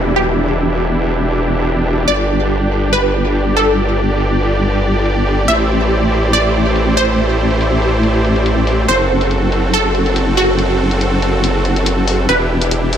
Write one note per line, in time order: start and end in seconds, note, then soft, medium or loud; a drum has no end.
0.00 2.06 E1 medium
0.00 5.44 D4 medium
0.00 2.04 E4 medium
0.00 8.84 G4 medium
0.00 downlifter medium
0.16 2.00 G4 medium
0.16 open hi-hat medium
0.37 closed hi-hat medium
0.70 closed hi-hat medium
0.80 closed hi-hat medium
1.01 closed hi-hat soft
1.22 closed hi-hat medium
1.44 closed hi-hat soft
1.55 closed hi-hat soft
1.65 closed hi-hat medium
1.86 open hi-hat medium
2.08 5.46 G1 medium
2.08 2.85 D5 loud
2.08 closed hi-hat medium
2.40 closed hi-hat soft
2.50 closed hi-hat medium
2.71 closed hi-hat soft
2.93 3.49 B4 medium
2.93 closed hi-hat medium
3.14 closed hi-hat soft
3.25 closed hi-hat soft
3.35 closed hi-hat medium
3.57 5.40 A4 medium
3.57 open hi-hat medium
3.78 closed hi-hat medium
4.10 closed hi-hat soft
4.20 closed hi-hat medium
4.42 closed hi-hat soft
4.63 closed hi-hat medium
4.84 closed hi-hat soft
4.96 closed hi-hat soft
5.06 closed hi-hat medium
5.27 open hi-hat medium
5.48 8.86 A1 medium
5.48 8.85 A3 medium
5.48 8.85 E4 medium
5.48 8.85 C5 medium
5.48 6.25 E5 medium
5.48 closed hi-hat medium
5.81 closed hi-hat soft
5.91 closed hi-hat medium
6.12 closed hi-hat soft
6.33 6.89 D5 medium
6.33 closed hi-hat medium
6.54 closed hi-hat soft
6.66 closed hi-hat soft
6.76 closed hi-hat medium
6.97 8.81 C5 medium
6.97 open hi-hat medium
7.18 closed hi-hat medium
7.51 closed hi-hat soft
7.61 closed hi-hat medium
7.82 closed hi-hat soft
8.03 closed hi-hat medium
8.25 closed hi-hat soft
8.36 closed hi-hat soft
8.46 closed hi-hat medium
8.67 open hi-hat medium
8.88 12.27 F#1 medium
8.88 12.25 C4 medium
8.88 12.25 F#4 medium
8.88 12.25 A4 medium
8.88 9.66 C5 medium
8.88 closed hi-hat medium
9.21 closed hi-hat soft
9.31 closed hi-hat medium
9.52 closed hi-hat soft
9.73 10.29 A4 medium
9.73 closed hi-hat medium
9.95 closed hi-hat soft
10.06 closed hi-hat soft
10.16 closed hi-hat medium
10.37 12.21 F#4 medium
10.37 open hi-hat medium
10.59 closed hi-hat medium
10.91 closed hi-hat soft
11.01 closed hi-hat medium
11.22 closed hi-hat soft
11.44 closed hi-hat medium
11.65 closed hi-hat soft
11.76 closed hi-hat soft
11.86 closed hi-hat medium
12.08 open hi-hat medium
12.29 12.97 E1 medium
12.29 12.97 D4 medium
12.29 12.97 E4 medium
12.29 12.97 G4 medium
12.29 12.97 B4 medium
12.29 closed hi-hat medium
12.62 closed hi-hat medium
12.71 closed hi-hat medium
12.93 closed hi-hat soft